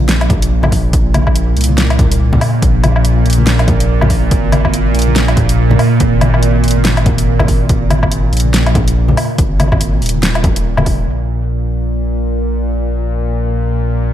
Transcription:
Already playing: sub bass A#1, synth drone A#2
0.00 high conga
0.09 snare, closed hi-hat
0.21 closed hi-hat, low woodblock
0.30 kick, closed hi-hat, low conga
0.42 closed hi-hat
0.63 high conga, low conga, low woodblock
0.72 sub bass A#1, kick, open hi-hat
0.93 sub bass A#1, kick, closed hi-hat
1.14 closed hi-hat, high conga, low woodblock
1.27 kick, low woodblock
1.36 closed hi-hat
1.57 sub bass C2, closed hi-hat
1.61 closed hi-hat
1.64 closed hi-hat
1.69 high conga
1.78 snare, closed hi-hat
1.90 closed hi-hat, low woodblock
1.99 kick, closed hi-hat, low conga
2.12 closed hi-hat
2.33 high conga, low conga
2.41 open hi-hat, low woodblock
2.62 sub bass A#1, kick, closed hi-hat
2.84 closed hi-hat, high conga, low woodblock
2.96 low woodblock
3.05 closed hi-hat
3.26 sub bass A#1, closed hi-hat
3.30 closed hi-hat
3.33 closed hi-hat
3.38 high conga
3.47 snare, closed hi-hat
3.59 closed hi-hat, low woodblock
3.68 kick, closed hi-hat, low conga
3.80 closed hi-hat
4.01 high conga, low conga, low woodblock
4.10 kick, open hi-hat
4.31 sub bass G#1, kick, closed hi-hat
4.52 closed hi-hat, high conga, low woodblock
4.65 kick, low woodblock
4.74 closed hi-hat
4.95 sub bass A#1, closed hi-hat
4.99 closed hi-hat
5.02 closed hi-hat
5.08 high conga
5.16 snare, closed hi-hat
5.28 closed hi-hat, low woodblock
5.37 kick, closed hi-hat, low conga
5.49 closed hi-hat
5.70 high conga, low conga
5.79 open hi-hat, low woodblock
6.00 sub bass G#1, kick, closed hi-hat
6.21 closed hi-hat, high conga, low woodblock
6.34 low woodblock
6.43 closed hi-hat
6.64 sub bass G#1, closed hi-hat
6.68 closed hi-hat
6.71 closed hi-hat
6.77 high conga
6.85 snare, closed hi-hat
6.97 closed hi-hat, low woodblock
7.06 kick, closed hi-hat, low conga
7.18 closed hi-hat
7.39 high conga, low conga, low woodblock
7.48 sub bass G#1, kick, open hi-hat
7.69 sub bass G#1, kick, closed hi-hat
7.90 closed hi-hat, high conga, low woodblock
8.03 kick, low woodblock
8.12 closed hi-hat
8.33 sub bass A#1, closed hi-hat
8.37 closed hi-hat
8.40 closed hi-hat
8.45 high conga
8.54 snare, closed hi-hat
8.66 closed hi-hat, low woodblock
8.75 kick, closed hi-hat, low conga
8.88 closed hi-hat
9.08 high conga, low conga
9.17 open hi-hat, low woodblock
9.38 sub bass G#1, kick, closed hi-hat
9.60 closed hi-hat, high conga, low woodblock
9.72 kick, low conga, low woodblock
9.81 closed hi-hat
10.02 sub bass D#1, open hi-hat
10.06 closed hi-hat
10.09 closed hi-hat
10.15 high conga
10.23 snare, closed hi-hat
10.35 closed hi-hat, low woodblock
10.44 kick, closed hi-hat, low conga
10.56 closed hi-hat
10.77 high conga, low conga, low woodblock
10.86 kick, open hi-hat
11.07 sub bass A#1, synth drone A#2

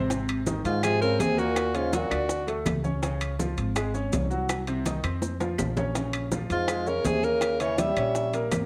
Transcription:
Already playing: upright bass G#1
0.10 upright piano C3 C4, high bongo, high timbale, maracas
0.29 high conga, high timbale, claves, maracas
0.46 upright piano D#3 D#4, high bongo, high conga, low timbale, maracas
0.65 upright bass G#2, trombone G#2, alto saxophone F4, high bongo, high conga, high timbale, maracas
0.83 trombone C3, upright piano F3 F4, alto saxophone G#4, high bongo, high conga, high timbale, claves, maracas
1.01 trombone C#3, upright piano C4 C5, alto saxophone A#4, high bongo, high conga, maracas
1.19 upright bass D#2, trombone C3, alto saxophone G#4, high bongo, low bongo, high conga, high timbale, low timbale, maracas
1.37 trombone A#2, upright piano A#3 A#4, alto saxophone F#4, high bongo, high conga, maracas
1.56 high bongo, high conga, high timbale, claves, maracas
1.74 trombone G#2, upright piano C#3 C#4, alto saxophone F4, high conga, high timbale, maracas
1.92 trombone A#2, upright piano F#3 F#4, alto saxophone F#4, high bongo, high conga, high timbale, low timbale, maracas
2.11 upright bass D2, upright piano D4 D5, high bongo, high conga, high timbale, claves, maracas
2.29 high bongo, high conga, maracas
2.47 upright piano A3 A4, high bongo, high conga, high timbale, maracas
2.66 upright bass C#2, high bongo, low bongo, high conga, high timbale, low timbale, claves, maracas
2.84 upright piano C#4 C#5, high bongo, high conga, maracas
3.02 upright piano C#3 C#4, high bongo, high conga, high timbale, maracas
3.21 high conga, high timbale, claves, maracas
3.39 upright piano F3 F4, high bongo, high conga, low timbale, maracas
3.58 upright bass G#1, high bongo, high conga, high timbale, maracas
3.76 upright piano G#3 G#4, high bongo, high conga, high timbale, claves, maracas
3.94 upright piano C#4 C#5, high bongo, high conga, maracas
4.12 upright bass C2, high bongo, low bongo, high conga, high timbale, low timbale, maracas
4.30 upright piano F#3 F#4, high bongo, high conga, maracas
4.49 high bongo, high conga, high timbale, claves, maracas
4.67 upright piano C3 C4, high conga, high timbale, maracas
4.86 upright piano D#3 D#4, high bongo, high conga, high timbale, low timbale, maracas
5.03 upright bass F2, upright piano C4 C5, high bongo, high conga, high timbale, claves, maracas
5.22 high bongo, high conga, maracas
5.40 upright piano F3 F4, high bongo, high conga, high timbale, maracas
5.58 upright bass A#1, low bongo, high conga, low timbale, claves, maracas
5.77 upright piano C#4 C#5, low bongo, high conga, low timbale, maracas
5.95 upright piano C#3 C#4, high bongo, high conga, high timbale, maracas
6.13 high conga, high timbale, claves, maracas
6.32 upright piano F3 F4, high bongo, high conga, low timbale, maracas
6.50 upright bass F2, trombone G#2, alto saxophone F4, high bongo, high conga, high timbale, maracas
6.68 upright piano G#3 G#4, high bongo, high conga, high timbale, claves, maracas
6.86 trombone C#3, upright piano C#4 C#5, alto saxophone A#4, high bongo, high conga, maracas
7.05 upright bass D#2, trombone C3, alto saxophone G#4, high bongo, low bongo, high conga, high timbale, low timbale, maracas
7.23 trombone C#3, upright piano A#3 A#4, alto saxophone A#4, high bongo, high conga, maracas
7.41 high bongo, high conga, high timbale, claves, maracas
7.60 upright piano C#3 C#4, trombone E3, alto saxophone C#5, high conga, high timbale, maracas
7.78 trombone G3, upright piano G3 G4, alto saxophone E5, high bongo, high conga, high timbale, low timbale, maracas
7.96 upright bass A#1, upright piano C#4 C#5, high bongo, high conga, high timbale, claves, maracas
8.15 high bongo, high conga, maracas
8.33 upright piano A#3 A#4, high bongo, high conga, high timbale, maracas
8.52 upright bass G#1, high bongo, low bongo, high conga, high timbale, low timbale, claves, maracas

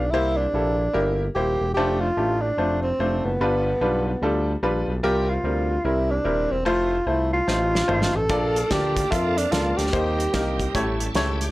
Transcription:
Already playing: analog synth bass B1, tenor saxophone D4
0.11 analog synth bass C2, grand piano C3 A#3 E4 G4 C5, tenor saxophone E4
0.37 tenor saxophone D4
0.53 analog synth bass A#1, grand piano A#3 E4 G4 A4
0.93 analog synth bass G1, grand piano A#3 E4 G4 A#4
1.35 analog synth bass D#1, grand piano A#3 E4 G4 C5, tenor saxophone G4
1.61 analog synth bass E1
1.74 analog synth bass F1, grand piano A3 D4 F4 C5, tenor saxophone G4
2.00 tenor saxophone F4
2.17 analog synth bass A1, grand piano A3 D4 F4 G4
2.41 tenor saxophone D4
2.57 analog synth bass F1, grand piano A3 D4 F4 C5
2.83 tenor saxophone C4
2.99 analog synth bass F1, grand piano A3 D4 F4 C5
3.24 analog synth bass F#1, tenor saxophone B3
3.40 analog synth bass G1, grand piano G2 G3 D4 F4 B4
3.81 analog synth bass B1, grand piano G3 D4 F4 B4
4.22 analog synth bass D2, grand piano G3 D4 F4 A4
4.62 analog synth bass A#1, grand piano G3 D4 F4 B4
4.88 analog synth bass B1
5.03 analog synth bass C2, grand piano C3 G3 C4 F4 A#4, tenor saxophone G4
5.29 tenor saxophone F4
5.43 analog synth bass D2, grand piano G3 C4 F4 A#4
5.84 analog synth bass C2, grand piano C3 G3 C4 E4 A#4, tenor saxophone E4
6.11 tenor saxophone D4
6.24 analog synth bass D#1, grand piano G3 C4 E4 A#4
6.51 analog synth bass E1, tenor saxophone C4
6.65 analog synth bass F1, grand piano A3 E4 F4 C5, tenor saxophone F4
7.06 analog synth bass C2, grand piano A3 E4 F4 C5, tenor saxophone E4
7.33 tenor saxophone F4
7.47 analog synth bass A1, grand piano A2 A3 D#4 F4 C5, snare
7.75 snare
7.88 analog synth bass G#1, grand piano A3 D#4 F4 C5, mid tom
8.02 snare
8.14 analog synth bass A1, tenor saxophone A4
8.29 analog synth bass A#1, grand piano A#2 A#3 F4 A4 D5, tonewheel organ F3 A#3 D4 G4, kick, closed hi-hat
8.35 tonewheel organ A4
8.56 closed hi-hat
8.71 analog synth bass D2, grand piano A#3 F4 A4 D5, tenor saxophone G4, kick, snare, closed hi-hat
8.97 kick, closed hi-hat
9.10 analog synth bass F2, grand piano A#3 F4 A4 E5, tenor saxophone F4, kick, closed hi-hat
9.38 tenor saxophone D4, closed hi-hat
9.51 analog synth bass C#2, grand piano A#3 F4 A4 D5, tenor saxophone F4, snare, closed hi-hat
9.77 analog synth bass D2, tenor saxophone G4, snare, closed hi-hat
9.87 snare
9.92 analog synth bass D#2, grand piano D#3 A#3 D#4 G4 C5, tonewheel organ F3 C4 D#4 A#4, kick, closed hi-hat
9.99 tonewheel organ G3
10.20 closed hi-hat
10.33 analog synth bass C2, grand piano A#3 D#4 G4 A#4, kick, snare, closed hi-hat
10.60 kick, closed hi-hat
10.74 analog synth bass A1, grand piano A2 A3 E4 G4 C#5, tonewheel organ G3 C#4 E4 A4, kick, closed hi-hat
11.00 tonewheel organ A5, closed hi-hat
11.14 analog synth bass C#2, grand piano A3 E4 G4 C#5, tonewheel organ E4 A4 G5, snare, closed hi-hat
11.41 tonewheel organ C#4 G4 D5, closed hi-hat

